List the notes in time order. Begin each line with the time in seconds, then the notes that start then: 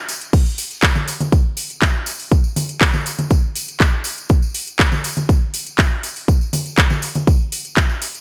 0.09 open hi-hat, tambourine
0.21 closed hi-hat, tambourine
0.33 kick, closed hi-hat, crash, tambourine
0.46 tambourine
0.58 open hi-hat, tambourine
0.71 closed hi-hat, tambourine
0.82 kick, clap, closed hi-hat, tambourine
0.95 tambourine, low conga
1.08 open hi-hat, tambourine
1.20 closed hi-hat, tambourine, low conga
1.32 kick, closed hi-hat, tambourine
1.57 open hi-hat, tambourine
1.70 closed hi-hat, tambourine
1.82 kick, clap, closed hi-hat, tambourine
2.06 open hi-hat, tambourine
2.19 open hi-hat, tambourine
2.32 kick, closed hi-hat, tambourine
2.44 tambourine
2.56 open hi-hat, tambourine, low conga
2.69 closed hi-hat, tambourine
2.81 kick, clap, closed hi-hat, tambourine
2.93 tambourine, low conga
3.06 open hi-hat, tambourine
3.18 closed hi-hat, tambourine, low conga
3.30 kick, closed hi-hat, tambourine
3.56 open hi-hat, tambourine
3.68 closed hi-hat, tambourine
3.80 kick, clap, closed hi-hat, tambourine
4.04 open hi-hat, tambourine
4.18 closed hi-hat, tambourine
4.29 kick, closed hi-hat, tambourine
4.42 tambourine
4.54 open hi-hat, tambourine
4.67 closed hi-hat, tambourine
4.79 kick, clap, closed hi-hat, tambourine
4.92 tambourine, low conga
5.04 open hi-hat, tambourine
5.17 closed hi-hat, tambourine, low conga
5.29 kick, closed hi-hat, tambourine
5.54 open hi-hat, tambourine
5.66 closed hi-hat, tambourine
5.79 kick, clap, closed hi-hat, tambourine
6.03 open hi-hat, tambourine
6.16 open hi-hat, tambourine
6.28 kick, closed hi-hat, tambourine
6.41 tambourine
6.53 open hi-hat, tambourine, low conga
6.66 closed hi-hat, tambourine
6.77 kick, clap, closed hi-hat, tambourine
6.90 tambourine, low conga
7.02 open hi-hat, tambourine
7.15 closed hi-hat, tambourine, low conga
7.27 kick, closed hi-hat, tambourine
7.52 open hi-hat, tambourine
7.65 closed hi-hat, tambourine
7.77 kick, clap, closed hi-hat, tambourine
7.89 tambourine
8.02 open hi-hat, tambourine
8.15 closed hi-hat, tambourine